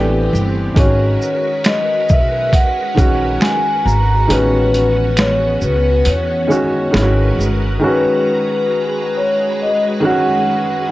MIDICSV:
0, 0, Header, 1, 6, 480
1, 0, Start_track
1, 0, Key_signature, 5, "minor"
1, 0, Tempo, 882353
1, 417, Time_signature, 4, 2, 24, 8
1, 5937, End_track
2, 0, Start_track
2, 0, Title_t, "Vibraphone"
2, 0, Program_c, 0, 11
2, 0, Note_on_c, 0, 71, 79
2, 159, Note_off_c, 0, 71, 0
2, 426, Note_on_c, 0, 73, 91
2, 903, Note_on_c, 0, 75, 90
2, 915, Note_off_c, 0, 73, 0
2, 1145, Note_on_c, 0, 76, 93
2, 1147, Note_off_c, 0, 75, 0
2, 1364, Note_off_c, 0, 76, 0
2, 1382, Note_on_c, 0, 78, 98
2, 1855, Note_on_c, 0, 80, 96
2, 1874, Note_off_c, 0, 78, 0
2, 2097, Note_on_c, 0, 82, 99
2, 2103, Note_off_c, 0, 80, 0
2, 2340, Note_on_c, 0, 71, 96
2, 2344, Note_off_c, 0, 82, 0
2, 2819, Note_on_c, 0, 73, 91
2, 2833, Note_off_c, 0, 71, 0
2, 3041, Note_off_c, 0, 73, 0
2, 3063, Note_on_c, 0, 71, 86
2, 3307, Note_off_c, 0, 71, 0
2, 3308, Note_on_c, 0, 73, 78
2, 4000, Note_off_c, 0, 73, 0
2, 4273, Note_on_c, 0, 71, 86
2, 4988, Note_on_c, 0, 73, 90
2, 5006, Note_off_c, 0, 71, 0
2, 5229, Note_off_c, 0, 73, 0
2, 5233, Note_on_c, 0, 75, 91
2, 5338, Note_off_c, 0, 75, 0
2, 5469, Note_on_c, 0, 78, 97
2, 5921, Note_off_c, 0, 78, 0
2, 5937, End_track
3, 0, Start_track
3, 0, Title_t, "String machine"
3, 0, Program_c, 1, 50
3, 0, Note_on_c, 1, 59, 80
3, 0, Note_on_c, 1, 60, 73
3, 0, Note_on_c, 1, 67, 83
3, 398, Note_off_c, 1, 59, 0
3, 410, Note_off_c, 1, 60, 0
3, 410, Note_off_c, 1, 67, 0
3, 416, Note_on_c, 1, 56, 82
3, 417, Note_on_c, 1, 70, 75
3, 417, Note_on_c, 1, 71, 89
3, 418, Note_on_c, 1, 66, 75
3, 2317, Note_off_c, 1, 56, 0
3, 2317, Note_off_c, 1, 70, 0
3, 2318, Note_off_c, 1, 71, 0
3, 2337, Note_on_c, 1, 59, 75
3, 2338, Note_on_c, 1, 61, 78
3, 3763, Note_off_c, 1, 59, 0
3, 3763, Note_off_c, 1, 61, 0
3, 3778, Note_on_c, 1, 56, 78
3, 3779, Note_on_c, 1, 70, 67
3, 3779, Note_on_c, 1, 71, 80
3, 4236, Note_off_c, 1, 66, 0
3, 4253, Note_off_c, 1, 56, 0
3, 4253, Note_off_c, 1, 70, 0
3, 4253, Note_off_c, 1, 71, 0
3, 4260, Note_on_c, 1, 56, 79
3, 4261, Note_on_c, 1, 66, 76
3, 4261, Note_on_c, 1, 82, 72
3, 4262, Note_on_c, 1, 71, 84
3, 5937, Note_off_c, 1, 56, 0
3, 5937, Note_off_c, 1, 66, 0
3, 5937, Note_off_c, 1, 71, 0
3, 5937, Note_off_c, 1, 82, 0
3, 5937, End_track
4, 0, Start_track
4, 0, Title_t, "Upright piano"
4, 0, Program_c, 2, 0
4, 0, Note_on_c, 2, 52, 79
4, 0, Note_on_c, 2, 57, 69
4, 0, Note_on_c, 2, 62, 70
4, 0, Note_on_c, 2, 67, 91
4, 27, Control_c, 2, 64, 127
4, 337, Note_off_c, 2, 52, 0
4, 341, Note_off_c, 2, 57, 0
4, 345, Note_off_c, 2, 62, 0
4, 349, Note_off_c, 2, 67, 0
4, 405, Note_on_c, 2, 51, 73
4, 413, Note_on_c, 2, 56, 58
4, 421, Note_on_c, 2, 61, 68
4, 424, Control_c, 2, 64, 0
4, 430, Note_on_c, 2, 66, 78
4, 526, Control_c, 2, 64, 127
4, 1086, Note_off_c, 2, 51, 0
4, 1090, Note_off_c, 2, 56, 0
4, 1094, Note_off_c, 2, 61, 0
4, 1099, Note_off_c, 2, 66, 0
4, 1602, Note_on_c, 2, 51, 65
4, 1612, Note_on_c, 2, 56, 67
4, 1620, Note_on_c, 2, 61, 68
4, 1629, Note_on_c, 2, 66, 79
4, 2111, Note_off_c, 2, 51, 0
4, 2116, Note_off_c, 2, 56, 0
4, 2120, Note_off_c, 2, 61, 0
4, 2125, Note_off_c, 2, 66, 0
4, 2325, Note_on_c, 2, 51, 73
4, 2333, Note_on_c, 2, 56, 71
4, 2341, Note_on_c, 2, 61, 67
4, 2345, Control_c, 2, 64, 0
4, 2350, Note_on_c, 2, 66, 76
4, 2445, Control_c, 2, 64, 127
4, 3007, Note_off_c, 2, 51, 0
4, 3010, Note_off_c, 2, 56, 0
4, 3014, Note_off_c, 2, 61, 0
4, 3019, Note_off_c, 2, 66, 0
4, 3521, Note_on_c, 2, 51, 74
4, 3528, Note_on_c, 2, 56, 73
4, 3538, Note_on_c, 2, 61, 68
4, 3544, Note_on_c, 2, 66, 83
4, 3751, Note_off_c, 2, 51, 0
4, 3759, Note_on_c, 2, 51, 74
4, 3761, Note_off_c, 2, 56, 0
4, 3768, Note_off_c, 2, 61, 0
4, 3769, Note_on_c, 2, 56, 83
4, 3777, Note_on_c, 2, 61, 68
4, 3780, Note_off_c, 2, 66, 0
4, 3783, Control_c, 2, 64, 0
4, 3784, Note_on_c, 2, 64, 64
4, 3820, Note_on_c, 2, 66, 80
4, 3823, Note_off_c, 2, 64, 0
4, 3865, Control_c, 2, 64, 127
4, 4171, Note_off_c, 2, 51, 0
4, 4176, Note_off_c, 2, 56, 0
4, 4180, Note_off_c, 2, 61, 0
4, 4202, Note_off_c, 2, 66, 0
4, 4240, Note_on_c, 2, 51, 85
4, 4249, Note_on_c, 2, 56, 72
4, 4255, Note_on_c, 2, 61, 78
4, 4264, Control_c, 2, 64, 0
4, 4264, Note_on_c, 2, 66, 89
4, 4346, Control_c, 2, 64, 127
4, 4924, Note_off_c, 2, 51, 0
4, 4928, Note_off_c, 2, 56, 0
4, 4931, Note_off_c, 2, 61, 0
4, 4936, Note_off_c, 2, 66, 0
4, 5441, Note_on_c, 2, 51, 78
4, 5449, Note_on_c, 2, 56, 75
4, 5459, Note_on_c, 2, 61, 80
4, 5467, Note_on_c, 2, 66, 97
4, 5799, Note_off_c, 2, 51, 0
4, 5804, Note_off_c, 2, 56, 0
4, 5808, Note_off_c, 2, 61, 0
4, 5812, Note_off_c, 2, 66, 0
4, 5937, End_track
5, 0, Start_track
5, 0, Title_t, "Upright bass"
5, 0, Program_c, 3, 32
5, 0, Note_on_c, 3, 33, 87
5, 149, Note_off_c, 3, 33, 0
5, 180, Note_on_c, 3, 31, 89
5, 388, Note_off_c, 3, 31, 0
5, 417, Note_on_c, 3, 32, 108
5, 627, Note_off_c, 3, 32, 0
5, 1145, Note_on_c, 3, 35, 77
5, 1351, Note_off_c, 3, 35, 0
5, 1620, Note_on_c, 3, 34, 75
5, 1828, Note_off_c, 3, 34, 0
5, 2097, Note_on_c, 3, 32, 89
5, 2307, Note_off_c, 3, 32, 0
5, 2337, Note_on_c, 3, 33, 106
5, 3035, Note_off_c, 3, 33, 0
5, 3056, Note_on_c, 3, 37, 85
5, 3266, Note_off_c, 3, 37, 0
5, 3298, Note_on_c, 3, 40, 99
5, 3507, Note_off_c, 3, 40, 0
5, 3778, Note_on_c, 3, 32, 93
5, 3987, Note_off_c, 3, 32, 0
5, 4018, Note_on_c, 3, 31, 92
5, 4227, Note_off_c, 3, 31, 0
5, 5937, End_track
6, 0, Start_track
6, 0, Title_t, "Drums"
6, 189, Note_on_c, 9, 82, 40
6, 244, Note_off_c, 9, 82, 0
6, 415, Note_on_c, 9, 36, 107
6, 421, Note_on_c, 9, 42, 87
6, 469, Note_off_c, 9, 36, 0
6, 475, Note_off_c, 9, 42, 0
6, 662, Note_on_c, 9, 82, 42
6, 716, Note_off_c, 9, 82, 0
6, 894, Note_on_c, 9, 42, 63
6, 896, Note_on_c, 9, 26, 73
6, 903, Note_on_c, 9, 38, 108
6, 948, Note_off_c, 9, 42, 0
6, 951, Note_off_c, 9, 26, 0
6, 957, Note_off_c, 9, 38, 0
6, 1136, Note_on_c, 9, 82, 45
6, 1142, Note_on_c, 9, 36, 89
6, 1190, Note_off_c, 9, 82, 0
6, 1196, Note_off_c, 9, 36, 0
6, 1375, Note_on_c, 9, 36, 75
6, 1378, Note_on_c, 9, 42, 73
6, 1429, Note_off_c, 9, 36, 0
6, 1433, Note_off_c, 9, 42, 0
6, 1618, Note_on_c, 9, 36, 93
6, 1624, Note_on_c, 9, 42, 42
6, 1624, Note_on_c, 9, 82, 46
6, 1673, Note_off_c, 9, 36, 0
6, 1678, Note_off_c, 9, 42, 0
6, 1678, Note_off_c, 9, 82, 0
6, 1855, Note_on_c, 9, 26, 73
6, 1860, Note_on_c, 9, 38, 105
6, 1876, Note_on_c, 9, 42, 76
6, 1909, Note_off_c, 9, 26, 0
6, 1915, Note_off_c, 9, 38, 0
6, 1931, Note_off_c, 9, 42, 0
6, 2109, Note_on_c, 9, 82, 44
6, 2163, Note_off_c, 9, 82, 0
6, 2340, Note_on_c, 9, 42, 81
6, 2394, Note_off_c, 9, 42, 0
6, 2580, Note_on_c, 9, 42, 42
6, 2580, Note_on_c, 9, 82, 38
6, 2634, Note_off_c, 9, 42, 0
6, 2634, Note_off_c, 9, 82, 0
6, 2812, Note_on_c, 9, 26, 72
6, 2812, Note_on_c, 9, 42, 69
6, 2822, Note_on_c, 9, 38, 116
6, 2866, Note_off_c, 9, 26, 0
6, 2867, Note_off_c, 9, 42, 0
6, 2876, Note_off_c, 9, 38, 0
6, 3054, Note_on_c, 9, 82, 45
6, 3108, Note_off_c, 9, 82, 0
6, 3292, Note_on_c, 9, 42, 73
6, 3346, Note_off_c, 9, 42, 0
6, 3540, Note_on_c, 9, 82, 44
6, 3595, Note_off_c, 9, 82, 0
6, 3775, Note_on_c, 9, 26, 70
6, 3775, Note_on_c, 9, 38, 105
6, 3791, Note_on_c, 9, 42, 82
6, 3829, Note_off_c, 9, 38, 0
6, 3830, Note_off_c, 9, 26, 0
6, 3845, Note_off_c, 9, 42, 0
6, 4028, Note_on_c, 9, 82, 44
6, 4083, Note_off_c, 9, 82, 0
6, 5937, End_track
0, 0, End_of_file